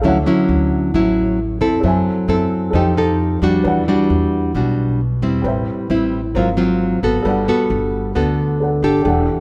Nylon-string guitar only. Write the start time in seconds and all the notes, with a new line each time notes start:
0.04 D3 F#3 C#4 E4
0.26 F#3 C#4 E4
0.94 A2 F#3 C#4 E4
1.61 C4 E4 A4
1.84 F#3
2.29 C4 E4 A4
2.74 F3 D#4 G4 A4
2.97 D#4 G4 A4
3.43 G3 D4 F#4
3.65 E3
3.88 G3 D4 F#4
4.55 B2 G3 D4 F#4
5.23 G3 C4 E4
5.46 A2
5.90 G3 C4 E4
6.36 G#2 F#3 C4 F4
6.57 F#3 C4 F4
7.03 B3 F#4 A4
7.26 G3
7.48 B3 F#4 A4
8.15 D3 B3 F#4 A4
8.84 D4 G4 A4
9.06 E3